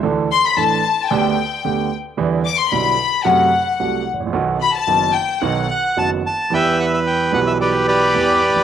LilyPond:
<<
  \new Staff \with { instrumentName = "Violin section" } { \time 4/4 \key e \minor \tempo 4 = 111 r8 c'''16 b''16 a''4 g''4. r8 | r8 d'''16 c'''16 b''4 fis''4. r8 | r8 b''16 a''8. g''8 fis''4 r4 | r1 | }
  \new Staff \with { instrumentName = "Bandoneon" } { \time 4/4 \key e \minor << { r1 | r1 | r2 r8 fis''8 a''8 a''8 | g''8 fis''16 e''16 g''8 fis''16 e''16 d''8 d''4. | } \\ { r1 | r1 | r1 | <b' e''>2 <g' b'>8 <g' b'>4. | } >> }
  \new Staff \with { instrumentName = "Grand piano" } { \clef bass \time 4/4 \key e \minor <d, d e a d' a'>8 r8 <a,, a, e a d' a'>8 r8 <d, d a b g'>8 r8 <d, d a b g'>8 r8 | <e, d e g b e'>8 r8 <b,, b, d g b e'>8 r8 <fis, c fis a fis'>8 r8 <c, c fis a fis'>8 r32 gis,,32 a,,32 ais,,32 | <b,, b, dis fis b fis'>8 r8 <fis,, fis, dis fis b fis'>8 r8 <b,, b, dis fis b fis'>8 r8 <fis,, fis, dis fis b fis'>8 r8 | <e, e g b g'>4. <b,, b, e g b g'>4. <e, e g b g'>8 r32 a,,32 ais,,32 r32 | }
>>